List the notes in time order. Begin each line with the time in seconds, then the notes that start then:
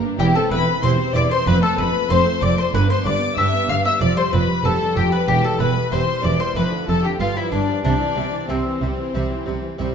Already playing: G2
0.03 D4
0.19 E1 E2 E4 G4 G5
0.34 C4 A4 A5
0.50 E1 E2 E4 B4 B5
0.66 C4
0.82 E1 E2 C4 E4 G4 C5 C6
0.98 C4
1.14 E1 E2 E4 D5 D6
1.30 C4 C5 C6
1.46 F1 F2 C4 B4 B5
1.62 A3 A4 A5
1.77 F1 F2 C4 B4 B5
1.94 A3
2.09 F1 F2 C4 F4 A4 C5 C6
2.25 A3
2.42 F1 F2 C4 D5 D6
2.57 A3 C5 C6
2.73 G1 G2 D4 B4 B5
2.89 B3 C5 C6
3.04 G1 G2 D4 D5 D6
3.20 B3
3.37 G1 G2 B3 D4 G4 E5 E6
3.52 B3
3.68 G1 G2 D4 F5 F6
3.84 B3 E5 E6
4.00 F1 F2 F3 D5 D6
4.16 G3 C5 C6
4.32 F1 F2 F3 B4 B5
4.48 G3
4.63 F1 F2 F3 D4 G4 A4 A5
4.80 G3
4.96 F1 F2 F3 G4 G5
5.12 G3 B4 B5
5.27 E1 E2 E3 G4 G5
5.43 G3 A4 A5
5.59 E1 E2 E3 B4 B5
5.76 G3
5.91 E1 E2 E3 C4 G4 C5 C6
6.08 G3
6.23 E1 E2 E3 D5 D6
6.39 G3 C5 C6
6.55 F1 F2 F3 A3 C4 D4 B4 B5
6.72 D3
6.87 F1 F2 F3 A4 A5
7.03 D3 G4 G5
7.20 G1 G2 G3 B3 F4 F5
7.36 F3 E4 E5
7.51 G1 G2 G3 D4 D5
7.68 F3
7.84 C2 C3 G3 D4 D5
8.01 E3
8.16 C2 C3 G3
8.33 E3
8.49 C2 C3 G3 C4 E4 C5
8.66 E3
8.81 C2 C3 G3
8.99 E3
9.14 C2 C3 G3 C4 E4
9.30 E3
9.46 C2 C3 G3
9.63 E3
9.78 C2 C3 G3 C4 E4